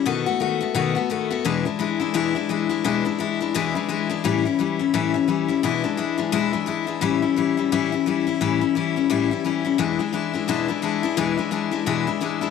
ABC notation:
X:1
M:4/4
L:1/8
Q:"Swing" 1/4=173
K:Emix
V:1 name="Steel-string acoustic guitar"
[B,,^D,A,B,F] [A,B,F] [D,A,B,F] [A,B,F] [B,,D,A,B,F] [A,B,F] [D,A,B,F] [A,B,F] | [E,,B,,E,G,DE] [E,G,DE] [E,G,DE] [E,G,DE] [E,,B,,E,G,DE] [E,G,DE] [E,G,DE] [E,G,DE] | [E,,B,,E,G,DE] [E,G,DE] [E,G,DE] [E,G,DE] [E,,B,,E,G,DE] [E,G,DE] [E,G,DE] [E,G,DE] | [A,,E,=G,CE] [G,CE] [E,G,CE] [G,CE] [A,,E,G,CE] [G,CE] [E,G,CE] [G,CE] |
[E,,B,,E,G,DE] [E,G,DE] [E,G,DE] [E,G,DE] [E,,B,,E,G,DE] [E,G,DE] [E,G,DE] [E,G,DE] | [A,,E,=G,CE] [G,CE] [E,G,CE] [G,CE] [A,,E,G,CE] [G,CE] [E,G,CE] [G,CE] | [A,,E,=G,CE] [G,CE] [E,G,CE] [G,CE] [A,,E,G,CE] [G,CE] [E,G,CE] [G,CE] | [E,,B,,E,G,DE] [E,G,DE] [E,G,DE] [E,G,DE] [E,,B,,E,G,DE] [E,G,DE] [E,G,DE] [E,G,DE] |
[E,,B,,E,G,DE] [E,G,DE] [E,G,DE] [E,G,DE] [E,,B,,E,G,DE] [E,G,DE] [E,G,DE] [E,G,DE] |]